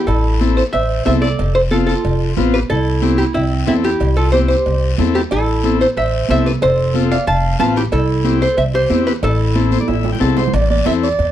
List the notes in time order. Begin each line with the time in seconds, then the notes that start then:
0.07 A1 E4 A4, cowbell, long guiro
0.41 C4 E4 A4, high conga, short guiro
0.57 A4 C5, short guiro
0.73 A1 C5 E5, cowbell, high conga, long guiro
1.05 C2 C4 E4 A4 C5 E5, high conga, low timbale, short guiro
1.22 A4 D5, short guiro
1.38 F1, cowbell, high conga, long guiro
1.55 A4 C5
1.71 C4 F4 A4, high conga, short guiro
1.87 F4 A4, short guiro
2.04 F1, cowbell, high conga, long guiro
2.37 A1 C4 F4 B4, high conga, low conga, low timbale, short guiro
2.54 G4 B4, short guiro
2.70 C2 E4 A4, cowbell, high conga, long guiro
3.02 C4 E4 G4, high conga, short guiro
3.18 E4 G4, short guiro
3.34 C2 C4 E4, cowbell, high conga, long guiro
3.66 E2 C4 E4 A4, high conga, low timbale, short guiro
3.84 E4 G4, short guiro
4.00 C2, cowbell, long guiro
4.17 F4 A4
4.32 C4 E4 G4 C5, high conga, short guiro
4.48 G4 C5, short guiro
4.66 C2, cowbell, high conga, long guiro
4.98 E2 C4 E4 A4, high conga, low conga, low timbale, short guiro
5.15 E4 G4, short guiro
5.31 A1 E4 A4, cowbell, high conga, long guiro
5.64 C4 E4 A4, high conga, short guiro
5.81 A4 C5, short guiro
5.97 A1 C5 E5, cowbell, high conga, long guiro
6.29 C2 C4 E4 A4 C5 E5, high conga, short guiro
6.45 G4 B4, short guiro
6.61 F1 A4 C5, cowbell, high conga, long guiro
6.94 C4 F4 A4, high conga, short guiro
7.11 D5 F5, short guiro
7.27 F1 F5 A5, cowbell, high conga, long guiro
7.59 A1 C4 F4 B4 F5 A5, high conga, low conga, short guiro
7.76 E4 G4, short guiro
7.92 C2 E4 A4, cowbell, high conga, long guiro
8.24 C4 E4 G4, high conga, short guiro
8.42 A4 C5, short guiro
8.57 C2 C5 E5, cowbell, high conga, long guiro
8.74 G4 C5
8.89 E2 C4 E4 G4, high conga, low timbale, short guiro
9.07 G4 B4, short guiro
9.22 A1 E4 A4, cowbell, high conga, long guiro
9.55 C4 E4 A4, high conga, short guiro
9.71 C5, high conga, short guiro
9.81 D5, high conga
9.88 A1 E5, cowbell, high timbale, long guiro
10.04 low conga, high timbale
10.12 G5, low conga
10.20 C2 C4 E4 A4 A5, low timbale, short guiro
10.37 C5 C6, low conga, low timbale, short guiro
10.48 low conga
10.53 A1 D5, cowbell, high conga, long guiro
10.70 D5, high conga
10.86 E2 C4 E4 A4 E5, high conga, short guiro
11.03 D5, short guiro
11.19 E2, cowbell, high conga, long guiro